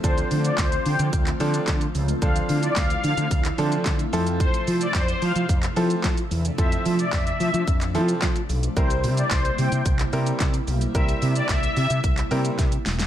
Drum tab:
HH |xxoxxxoxxxoxxxox|xxoxxxoxxxoxxxox|xxoxxxoxxxoxxxox|xxoxxxoxxxoxxxox|
SH |xxxxxxxxxxxxxxxx|xxxxxxxxxxxxxxxx|xxxxxxxxxxxxxxxx|xxxxxxxxxxxxxxxx|
CP |----x----x--x---|----x----x--x---|----x----x--x---|----x----x--x---|
SD |----o-------o---|----o-------o---|----o-------o---|----o-------o---|
BD |o---o---o---o---|o---o---o---o---|o---o---o---o---|o---o---o---o---|

HH |xxoxxxoxxxoxxxox|xxoxxxoxxxoxxxox|
SH |xxxxxxxxxxxxxxxx|xxxxxxxxxxxxxxxx|
CP |----x----x--x---|----x----x------|
SD |----o-------o---|----o-------o-oo|
BD |o---o---o---o---|o---o---o---o---|